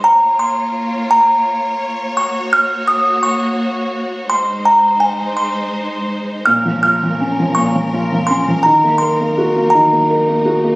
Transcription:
<<
  \new Staff \with { instrumentName = "Music box" } { \time 6/8 \key bes \minor \tempo 4. = 56 bes''8 c'''4 bes''4 r8 | des'''8 f'''8 ees'''8 des'''4 r8 | c'''8 bes''8 aes''8 c'''4 r8 | f'''8 f'''4 des'''4 c'''8 |
bes''8 c'''4 bes''4 r8 | }
  \new Staff \with { instrumentName = "String section" } { \time 6/8 \key bes \minor << { des''2.~ | des''2. | c''2. | bes'2.~ |
bes'2. | } \\ { <bes f'>2. | <bes ges'>2. | <aes ees'>2. | <f des'>2. |
<ges ees'>2. | } >> }
  \new Staff \with { instrumentName = "Felt piano" } { \time 6/8 \key bes \minor r2. | r2. | r2. | bes,16 f16 f'16 f16 des'16 f16 bes,16 f16 f'16 f16 des'16 f16 |
ees16 bes16 bes'16 bes16 ges'16 bes16 ees16 bes16 bes'16 bes16 ges'16 bes16 | }
>>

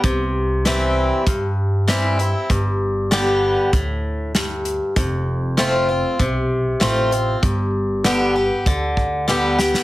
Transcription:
<<
  \new Staff \with { instrumentName = "Steel-string acoustic guitar" } { \time 4/4 \key g \mixolydian \tempo 4 = 97 << { r4 <e g c' e'>4 r4 <e g c' e'>8 <c' e'>8 | r4 <d g b g'>4 r2 | r4 <f a c' f'>8 <c' f'>8 r4 <f a c' f'>8 <c' f'>8 | r4 <d g b g'>8 <b g'>8 r4 <d g b g'>8 <b g'>8 | } \\ { c2 g,2 | g,2 r4 g,4 | f,2 c2 | g,2 d2 | } >> }
  \new Staff \with { instrumentName = "Upright bass" } { \clef bass \time 4/4 \key g \mixolydian c,2 g,2 | g,,2 d,2 | f,,2 b,,4 a,,4 | g,,2 d,2 | }
  \new DrumStaff \with { instrumentName = "Drums" } \drummode { \time 4/4 <hh bd>4 <hh sn>4 <hh bd>4 <hh sn>8 hh8 | <hh bd>4 <hh sn>4 <hh bd>4 <hh sn>8 hh8 | <hh bd>4 <hh sn>4 <hh bd>4 <hh sn>8 hh8 | <hh bd>4 <hh sn>4 <hh bd>8 bd8 sn8 sn16 sn16 | }
>>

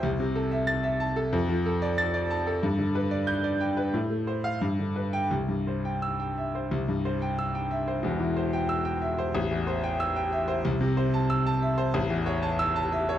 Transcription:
\new Staff \with { instrumentName = "Grand piano" } { \time 2/4 \key c \major \tempo 4 = 92 << { r4 a'''8 r8 | r4 a'''8 r8 | r4 g'''8 r8 | r8. f''16 r8. g''16 |
r4 e'''8 r8 | r4 e'''8 r8 | r4 e'''8 r8 | r4 e'''8 r8 |
r4 e'''8 r8 | \key a \lydian r4 e'''8 r8 | } \\ { c,16 c16 a'16 e''8 e''16 a''16 a'16 | f,16 f16 a'16 d''8 d''16 a''16 a'16 | g,16 d16 b'16 d''8 d''16 g''16 b'16 | a,16 a16 c''8 g,16 d16 b'8 |
c,16 g,16 c''16 g''8 g''16 e''16 c''16 | c,16 g,16 c''16 g''8 g''16 e''16 c''16 | <e,, e,>16 e16 c''16 g''8 g''16 e''16 c''16 | a,,16 e,16 c''16 g''8 g''16 e''16 c''16 |
c,16 c16 c''16 a''8 a''16 e''16 c''16 | a,,16 e,16 cis''16 a''8 a''16 e''16 cis''16 | } >> }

